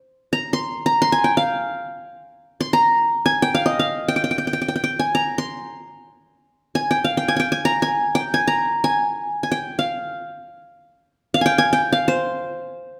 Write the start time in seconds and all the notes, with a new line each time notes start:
0.33 A#5
0.53 C6
0.86 A#5
1.02 C6
1.12 G#5
1.24 G5
1.37 F5
2.61 C6
2.73 A#5
3.26 G#5
3.42 G5
3.55 F5
3.66 D#5
3.79 F5
4.08 G5
4.16 G5
4.24 G5
4.31 G5
4.38 G5
4.47 G5
4.53 G5
4.62 G5
4.68 G5
4.76 G5
4.84 G5
4.99 G#5
5.15 A#5
5.38 C6
6.75 G#5
6.91 G5
7.04 F5
7.17 G5
7.28 G#5
7.36 G5 G#5
7.52 G#5
7.65 A#5
7.82 G#5
8.15 G5
8.34 G#5
8.48 A#5
8.84 G#5
9.43 G#5
9.52 G5
9.79 F5
11.34 F5
11.41 G#5
11.46 G5
11.58 G#5
11.73 G5
11.93 F5
12.08 C5